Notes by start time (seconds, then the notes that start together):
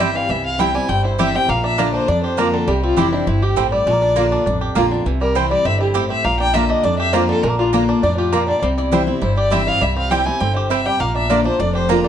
Already playing: G1 G2 E4 G4
0.00 E3 G3 C4 E4 C5 E5 G5
0.15 E3 F5
0.29 C2 C3 E3 E5
0.46 F5
0.59 E3 G3 C4 E4 C5 G5
0.74 G3 C4 E4 G#5
0.89 G1 G2 C4 G5
1.05 E4 C5
1.18 E3 G3 C4 E4 G4 C5 E5 G5
1.34 C4 E4 G5
1.49 A#1 A#2 A#3 F5
1.64 D4 E5
1.78 D3 A#3 D4 F4 D5 A#5
1.94 D4 C5
2.08 F2 D4 D5
2.23 G4 C5
2.37 D3 A#3 D4 F4 A#4 D5 A#5
2.54 D3 A4
2.67 C2 C3 G3 G4
2.83 C4 F4
2.97 F1 E3 G3 C4 E4 G4 C5 G5
3.13 D4 E4
3.27 G1 G2 C4 E4
3.42 G4
3.56 A1 A2 C4 E4 C5 G5
3.72 G3 D5
3.87 A#1 A#2 G#3
3.93 A#3
4.02 D4
4.16 D3 A#3 D4 F4 D5 A#5
4.32 D4
4.46 A1 F2 D4
4.61 G4
4.75 A#1 D3 A#3 D4 F4 D5 A#5
4.91 D3 D4 F4
5.06 C2 C3 E3
5.21 G3 A#4
5.35 E3 G3 C4 E4 C5 G5
5.51 G3 D5
5.65 G1 D3 C4 E5
5.80 E4 G4
5.94 A2 C4 E4 G4 C5 G5
6.10 C4 E5
6.24 A#1 A#2 A#3 F5
6.39 D4 G5
6.54 D3 A#3 D4 F4 D5 E5 A#5
6.69 D4 D#5
6.83 F2 D4 D5
6.99 G4 E5
7.13 D3 A#3 D4 F4 C5 D5 A#5
7.29 D3 A4
7.43 A#1 A#2 G#3 A#4
7.50 A#3
7.59 D4 F4
7.73 D3 A#3 D4 F4 D5 A#5
7.89 D4
8.03 F2 A2 D4 D5
8.17 F4 G4
8.32 A#2 A#3 F4 A#4 D5 A#5
8.48 D3 D5
8.62 C2 C3 G3 C5
8.78 E4 D5
8.92 E3 G3 C4 E4 C5 G5
9.07 C4 E4
9.22 G1 G2 E4 C5
9.37 G4 D5
9.50 E3 G3 C4 E4 C5 E5 G5
9.67 E4 F5
9.81 C2 C3 G3 E5
9.97 C4 F5
10.10 E3 G3 C4 E4 G4 C5 G5
10.25 C4 E4 G#5
10.40 G1 D3 C4 G5
10.56 G4 C5
10.70 C3 C4 E4 C5 E5 G5
10.86 G3 G5
11.00 A#1 A#2 A#3 F5
11.15 D4 E5
11.30 D3 A#3 D4 F4 D5 A#5
11.44 D4 F4 C5
11.59 F1 F2 D4 D5
11.75 G4 C5
11.89 D3 A#3 D4 F4 A#4 D5 A#5
12.04 D4 A4